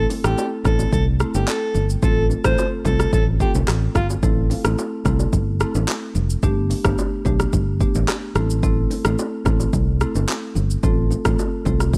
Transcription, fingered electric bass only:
0.24 0.34 A1 medium
0.65 0.85 A1 loud
0.93 1.22 C2 loud
1.35 1.44 G1 medium
1.75 1.95 G1 medium
2.03 2.32 A1 loud
2.45 2.54 A1 medium
2.85 3.05 C2 loud
3.13 3.42 A1 loud
3.55 3.64 C2 medium
3.68 3.87 A1 medium
3.95 4.15 G1 medium
4.23 4.53 A1 loud
4.65 4.74 A1 medium
5.06 5.25 C2 medium
5.33 5.63 G1 medium
5.75 5.84 A1 medium
6.15 6.35 F1 medium
6.43 6.73 G1 loud
6.85 6.94 G1 medium
7.26 7.45 B1 medium
7.53 7.83 G1 loud
7.95 8.04 A1 medium
8.36 8.85 A1 loud
9.05 9.14 A1 medium
9.46 9.65 A1 loud
9.73 10.03 C2 loud
10.15 10.24 G1 medium
10.56 10.75 G1 medium
10.83 11.13 A1 loud
11.25 11.35 A1 medium
11.66 11.98 C2 loud

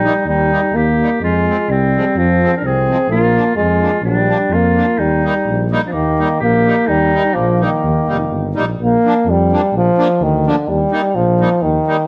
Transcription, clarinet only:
0.00 0.25 D#4 medium
0.29 0.78 D#4 medium
0.76 1.22 G4 medium
1.23 1.72 F4 medium
1.70 2.17 C4 medium
2.17 2.56 C4 medium
2.57 2.67 A#4 medium
2.66 3.10 G#4 medium
3.11 3.54 F4 medium
3.57 4.00 F4 medium
4.04 4.54 D4 medium
4.52 4.99 F4 medium
4.98 5.69 D#4 medium
5.86 5.93 D4 medium
5.92 6.39 A#3 medium
6.40 6.88 G4 medium
6.86 7.36 D#4 loud
7.35 7.59 A#3 medium
7.59 8.55 A#3 medium

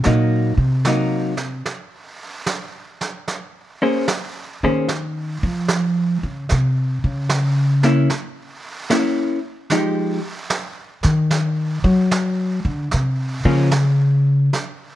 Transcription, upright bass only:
0.06 0.57 A#2 medium
0.58 1.61 C3 medium
4.63 5.39 D#3 medium
5.43 6.19 F3 medium
6.23 6.50 C#3 medium
6.52 7.02 C3 medium
7.04 8.07 C#3 medium
11.05 11.80 D#3 medium
11.84 12.60 F#3 medium
12.65 12.91 D3 medium
12.94 13.44 C3 medium
13.45 14.49 C#3 medium

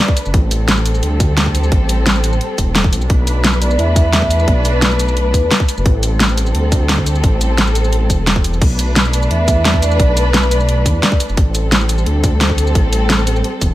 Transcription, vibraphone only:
0.00 0.13 D5 medium
3.62 3.79 D5 loud
3.79 3.95 E5 loud
3.96 4.49 E5 loud
4.48 4.66 D5 loud
4.65 4.97 B4 medium
5.00 5.64 B4 medium
9.13 9.21 D5 loud
9.31 9.38 E5 loud
9.48 9.83 E5 loud
9.82 10.14 D5 loud
10.17 10.52 B4 medium
10.51 11.16 D5 medium

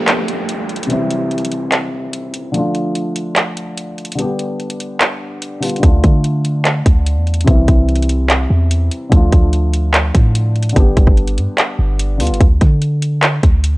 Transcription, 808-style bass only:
5.83 6.03 D2 loud
6.04 6.83 D3 loud
6.86 7.18 D2 loud
7.17 7.46 E2 loud
7.47 7.67 C2 loud
7.68 8.47 C2 loud
8.50 8.90 E2 loud
9.12 9.32 D2 loud
9.32 10.11 D2 loud
10.15 10.74 A2 loud
10.76 10.96 G1 loud
10.97 11.07 G1 loud
11.07 11.39 G1 loud
11.38 11.48 G2 loud
11.79 12.22 G1 loud
12.20 12.32 D2 loud
12.30 12.40 G1 medium
12.41 12.60 D2 loud
12.61 13.40 D3 loud
13.43 13.76 D2 loud
13.74 13.78 E2 loud

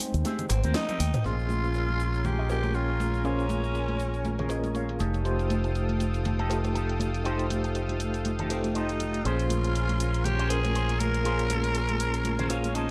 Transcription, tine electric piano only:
0.00 0.47 G#3 medium
0.00 0.47 C4 medium
0.00 0.47 D#4 medium
0.00 0.48 C5 medium
0.00 0.48 G5 medium
1.24 2.47 A#3 medium
1.24 2.47 C#4 medium
1.24 2.48 F4 medium
1.24 2.48 G#4 medium
1.24 2.48 C6 medium
2.49 3.22 A#3 medium
2.49 3.22 C#4 medium
2.49 3.23 F4 medium
2.49 3.23 G#4 medium
2.49 3.23 A#4 medium
3.24 4.47 A#3 medium
3.24 4.47 C#4 medium
3.24 4.47 F4 medium
3.24 4.48 G#4 medium
3.24 4.48 C6 medium
4.50 4.99 A#3 medium
4.50 4.99 C#4 medium
4.50 4.99 F4 medium
4.50 4.99 G#4 medium
4.50 4.99 A#4 medium
5.24 6.47 A3 medium
5.24 6.47 D#4 medium
5.24 6.47 F4 medium
5.24 6.47 G4 medium
5.24 6.48 C5 medium
6.49 7.22 A3 medium
6.49 7.22 D#4 medium
6.49 7.22 F4 medium
6.49 7.23 G4 medium
6.49 7.23 A4 medium
7.24 8.47 A3 medium
7.24 8.47 D#4 medium
7.24 8.47 F4 medium
7.24 8.48 G4 medium
7.24 8.48 C5 medium
8.49 9.22 A3 medium
8.49 9.22 D#4 medium
8.49 9.22 F4 medium
8.49 9.23 G4 medium
8.49 9.23 A4 medium
9.24 10.47 A#3 medium
9.24 10.47 C#4 medium
9.24 10.47 F4 medium
9.24 10.48 G#4 medium
9.24 10.48 C5 medium
10.49 11.22 A#3 medium
10.49 11.22 C#4 medium
10.49 11.22 F4 medium
10.49 11.23 G#4 medium
10.49 11.23 A#4 medium
11.24 12.47 A#3 medium
11.24 12.47 C#4 medium
11.24 12.47 F4 medium
11.24 12.48 G#4 medium
11.24 12.48 C6 medium
12.50 12.91 A#3 medium
12.50 12.91 C#4 medium
12.50 12.91 F4 medium
12.50 12.91 G#4 medium
12.50 12.91 A#4 medium

